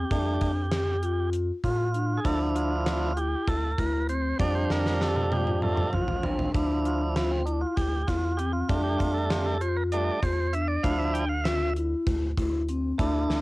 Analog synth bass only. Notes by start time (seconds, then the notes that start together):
0.11 F2
0.41 F2
1.64 A2
2.25 D2
3.48 D2
3.78 D2
4.40 F2
4.70 F2
5.93 A1
6.54 D2
7.77 D2
8.08 E2
8.69 F2
9.00 F2
10.23 E2
10.84 D2
12.07 D2
12.38 D2
12.99 D2
13.29 D2